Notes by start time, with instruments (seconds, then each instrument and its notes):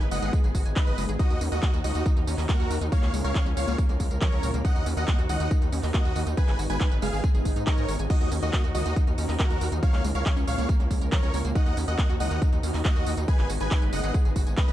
Already playing: analog synth pad G#3 B3 D#4
0.01 analog synth bass G#1, synth pluck B4, closed hi-hat, tambourine
0.11 analog synth bass F#1, synth pluck G#3, supersaw synth D#5 F#5, open hi-hat, tambourine
0.22 analog synth bass G#1, synth pluck G#4, closed hi-hat, tambourine
0.33 synth pluck G#4, kick, closed hi-hat, tambourine
0.44 analog synth bass G#1, synth pluck G#4, closed hi-hat, tambourine
0.55 analog synth bass G#1, synth pluck F#4, kick, open hi-hat, tambourine
0.65 analog synth bass G#1, synth pluck G#5, closed hi-hat, tambourine
0.76 synth pluck D#4, supersaw synth B4 D#5, kick, clap, closed hi-hat, tambourine
0.87 analog synth bass G#1, synth pluck B4, closed hi-hat, tambourine
0.98 analog synth bass F#1, synth pluck G#3, open hi-hat, tambourine
1.09 analog synth bass G#1, synth pluck G#4, closed hi-hat, tambourine
1.19 analog synth pad D#3 D#4 F#4 A#4, synth pluck D#4, supersaw synth F#4 D#5, kick, closed hi-hat, tambourine
1.30 analog synth bass D#2, synth pluck D#4, closed hi-hat, tambourine
1.41 analog synth bass D#2, synth pluck C#4, open hi-hat, tambourine
1.52 analog synth bass D#2, supersaw synth F#4 D#5, synth pluck D#5, closed hi-hat, tambourine
1.63 synth pluck A#3, kick, clap, closed hi-hat, tambourine
1.73 analog synth bass D#2, synth pluck F#4, closed hi-hat, tambourine
1.84 analog synth bass C#2, synth pluck D#3, supersaw synth F#4 D#5, open hi-hat, tambourine
1.95 analog synth bass D#2, synth pluck D#4, closed hi-hat, tambourine
2.06 synth pluck D#4, kick, closed hi-hat, tambourine
2.17 analog synth bass D#2, synth pluck D#4, closed hi-hat, tambourine
2.27 analog synth bass D#2, synth pluck C#4, open hi-hat, tambourine
2.38 analog synth bass D#2, synth pluck D#5, clap, open hi-hat, tambourine
2.49 synth pluck A#3, supersaw synth F#4 A#4, kick, clap, tambourine
2.60 analog synth bass D#2, synth pluck F#4, closed hi-hat, tambourine
2.70 analog synth bass D#2, synth pluck D#3, open hi-hat, tambourine
2.81 analog synth bass D#2, synth pluck D#4, closed hi-hat, tambourine
2.92 analog synth pad C#3 C#4 F4, synth pluck A#3, supersaw synth C#5 F5, kick, closed hi-hat, tambourine
3.03 analog synth bass C#2, synth pluck A#3, clap, closed hi-hat, tambourine
3.14 analog synth bass C#2, synth pluck G#3, open hi-hat, tambourine
3.24 analog synth bass C#2, synth pluck A#4, supersaw synth C#5 F5, closed hi-hat, tambourine
3.35 synth pluck F3, kick, clap, closed hi-hat, tambourine
3.46 analog synth bass C#2, synth pluck C#4, closed hi-hat, tambourine
3.57 analog synth bass C#2, synth pluck A#2, supersaw synth C#5 F5, open hi-hat, tambourine
3.68 analog synth bass C#2, synth pluck A#3, closed hi-hat, tambourine
3.78 synth pluck A#3, kick, closed hi-hat, tambourine
3.89 analog synth bass C#2, synth pluck A#3, closed hi-hat, tambourine
4.00 analog synth bass C#2, synth pluck G#3, kick, open hi-hat, tambourine
4.11 analog synth bass C#2, synth pluck A#4, closed hi-hat, tambourine
4.21 synth pluck F3, supersaw synth A#4 C#5, kick, clap, closed hi-hat, tambourine
4.32 analog synth bass C#2, synth pluck C#4, closed hi-hat, tambourine
4.43 analog synth bass C#2, synth pluck A#2, open hi-hat, tambourine
4.54 analog synth bass C#2, synth pluck A#3, closed hi-hat, tambourine
4.64 analog synth pad D#3 D#4 F#4, synth pluck D#4, supersaw synth D#5 F#5, kick, closed hi-hat, tambourine
4.75 analog synth bass D#2, synth pluck D#4, closed hi-hat, tambourine
4.86 analog synth bass D#2, synth pluck C#4, open hi-hat, tambourine
4.97 analog synth bass D#2, synth pluck D#5, supersaw synth D#5 F#5, closed hi-hat, tambourine
5.08 synth pluck A#3, kick, clap, closed hi-hat, tambourine
5.18 analog synth bass D#2, synth pluck F#4, closed hi-hat, tambourine
5.29 analog synth bass C#2, synth pluck D#3, supersaw synth D#5 F#5, open hi-hat, tambourine
5.40 analog synth bass D#2, synth pluck D#4, closed hi-hat, tambourine
5.51 synth pluck D#4, kick, closed hi-hat, tambourine
5.62 analog synth bass D#2, synth pluck D#4, closed hi-hat, tambourine
5.72 analog synth bass D#2, synth pluck C#4, open hi-hat, tambourine
5.83 analog synth bass D#2, synth pluck D#5, clap, open hi-hat, tambourine
5.94 synth pluck A#3, supersaw synth F#4 D#5, kick, clap, tambourine
6.05 analog synth bass D#2, synth pluck F#4, closed hi-hat, tambourine
6.16 analog synth bass D#2, synth pluck D#3, open hi-hat, tambourine
6.26 analog synth bass D#2, synth pluck D#4, closed hi-hat, tambourine
6.37 analog synth pad G#3 B3, synth pluck G#4, supersaw synth B4 G#5, kick, closed hi-hat, tambourine
6.48 analog synth bass G#1, synth pluck G#4, clap, closed hi-hat, tambourine
6.59 analog synth bass G#1, synth pluck F#4, open hi-hat, tambourine
6.70 analog synth bass G#1, supersaw synth B4 G#5, synth pluck G#5, closed hi-hat, tambourine
6.81 synth pluck D#4, kick, clap, closed hi-hat, tambourine
6.91 analog synth bass G#1, synth pluck B4, closed hi-hat, tambourine
7.02 analog synth bass F#1, synth pluck G#3, supersaw synth G#4 F5, open hi-hat, tambourine
7.13 analog synth bass G#1, synth pluck G#4, open hi-hat, tambourine
7.24 synth pluck G#4, kick, closed hi-hat, tambourine, swell
7.35 analog synth bass G#1, synth pluck G#4, closed hi-hat, tambourine
7.45 analog synth bass G#1, synth pluck G#4, kick, open hi-hat, tambourine
7.56 analog synth bass G#2, synth pluck D#4, closed hi-hat, tambourine
7.67 synth pluck D#4, supersaw synth A#4 C#5, kick, clap, closed hi-hat, tambourine
7.78 analog synth bass G#2, synth pluck D#5, closed hi-hat, tambourine
7.88 analog synth bass G#1, synth pluck G#3, open hi-hat, tambourine
7.99 analog synth bass G#1, synth pluck G#5, closed hi-hat, tambourine
8.10 analog synth pad D#3 D#4 F#4 A#4, synth pluck D#4, supersaw synth F#4 D#5, kick, closed hi-hat, tambourine, crash
8.21 analog synth bass D#2, synth pluck D#4, closed hi-hat, tambourine
8.32 analog synth bass D#2, synth pluck C#4, open hi-hat, tambourine
8.42 analog synth bass D#2, supersaw synth F#4 D#5, synth pluck D#5, closed hi-hat, tambourine
8.53 synth pluck A#3, kick, clap, closed hi-hat, tambourine
8.64 analog synth bass D#2, synth pluck F#4, closed hi-hat, tambourine
8.74 analog synth bass C#2, synth pluck D#3, supersaw synth F#4 D#5, open hi-hat, tambourine
8.86 analog synth bass D#2, synth pluck D#4, closed hi-hat, tambourine
8.96 synth pluck D#4, kick, closed hi-hat, tambourine
9.07 analog synth bass D#2, synth pluck D#4, closed hi-hat, tambourine
9.18 analog synth bass D#2, synth pluck C#4, open hi-hat, tambourine
9.29 analog synth bass D#2, synth pluck D#5, clap, open hi-hat, tambourine
9.39 synth pluck A#3, supersaw synth F#4 A#4, kick, clap, closed hi-hat, tambourine
9.50 analog synth bass D#2, synth pluck F#4, closed hi-hat, tambourine
9.61 analog synth bass D#2, synth pluck D#3, open hi-hat, tambourine
9.72 analog synth bass D#2, synth pluck D#4, closed hi-hat, tambourine
9.83 analog synth pad C#3 C#4 F4, synth pluck A#3, supersaw synth C#5 F5, kick, closed hi-hat, tambourine
9.93 analog synth bass C#2, synth pluck A#3, clap, closed hi-hat, tambourine
10.04 analog synth bass C#2, synth pluck G#3, open hi-hat, tambourine
10.15 analog synth bass C#2, synth pluck A#4, supersaw synth C#5 F5, closed hi-hat, tambourine
10.26 synth pluck F3, kick, clap, closed hi-hat, tambourine
10.36 analog synth bass C#2, synth pluck C#4, closed hi-hat, tambourine
10.47 analog synth bass C#2, synth pluck A#2, supersaw synth C#5 F5, open hi-hat, tambourine
10.58 analog synth bass C#2, synth pluck A#3, closed hi-hat, tambourine
10.69 synth pluck A#3, kick, closed hi-hat, tambourine
10.80 analog synth bass C#2, synth pluck A#3, closed hi-hat, tambourine
10.91 analog synth bass C#2, synth pluck G#3, kick, open hi-hat, tambourine
11.01 analog synth bass C#2, synth pluck A#4, closed hi-hat, tambourine
11.12 synth pluck F3, supersaw synth A#4 C#5, kick, clap, closed hi-hat, tambourine
11.23 analog synth bass C#2, synth pluck C#4, closed hi-hat, tambourine
11.34 analog synth bass C#2, synth pluck A#2, open hi-hat, tambourine
11.45 analog synth bass C#2, synth pluck A#3, closed hi-hat, tambourine
11.55 analog synth pad D#3 D#4 F#4 A#4, synth pluck D#4, supersaw synth D#5 F#5, kick, closed hi-hat, tambourine
11.66 analog synth bass D#2, synth pluck D#4, closed hi-hat, tambourine
11.77 analog synth bass D#2, synth pluck C#4, open hi-hat, tambourine
11.88 analog synth bass D#2, supersaw synth D#5 F#5, synth pluck D#5, closed hi-hat, tambourine
11.99 synth pluck A#3, kick, clap, closed hi-hat, tambourine
12.09 analog synth bass D#2, synth pluck F#4, closed hi-hat, tambourine
12.20 analog synth bass C#2, synth pluck D#3, supersaw synth D#5 F#5, open hi-hat, tambourine
12.31 analog synth bass D#2, synth pluck D#4, closed hi-hat, tambourine
12.42 synth pluck D#4, kick, closed hi-hat, tambourine
12.53 analog synth bass D#2, synth pluck D#4, closed hi-hat, tambourine
12.63 analog synth bass D#2, synth pluck C#4, open hi-hat, tambourine
12.74 analog synth bass D#2, synth pluck D#5, clap, open hi-hat, tambourine
12.85 synth pluck A#3, supersaw synth F#4 D#5, kick, clap, closed hi-hat, tambourine
12.96 analog synth bass D#2, synth pluck F#4, closed hi-hat, tambourine
13.06 analog synth bass D#2, synth pluck D#3, open hi-hat, tambourine
13.17 analog synth bass D#2, synth pluck D#4, closed hi-hat, tambourine
13.28 analog synth pad G#3 B3, synth pluck G#4, supersaw synth B4 G#5, kick, closed hi-hat, tambourine
13.39 analog synth bass G#1, synth pluck G#4, clap, closed hi-hat, tambourine
13.50 analog synth bass G#1, synth pluck F#4, open hi-hat, tambourine
13.60 analog synth bass G#1, supersaw synth B4 G#5, synth pluck G#5, closed hi-hat, tambourine
13.71 synth pluck D#4, kick, clap, closed hi-hat, tambourine
13.82 analog synth bass G#1, synth pluck B4, closed hi-hat, tambourine
13.93 analog synth bass F#1, synth pluck G#3, supersaw synth D#5 F#5, open hi-hat, tambourine
14.04 analog synth bass G#1, synth pluck G#4, closed hi-hat, tambourine
14.14 synth pluck G#4, kick, closed hi-hat, tambourine
14.25 analog synth bass G#1, synth pluck G#4, closed hi-hat, tambourine
14.36 analog synth bass G#1, synth pluck F#4, kick, open hi-hat, tambourine
14.47 analog synth bass G#1, synth pluck G#5, closed hi-hat, tambourine
14.57 synth pluck D#4, supersaw synth B4 D#5, kick, clap, closed hi-hat, tambourine
14.68 analog synth bass G#1, synth pluck B4, closed hi-hat, tambourine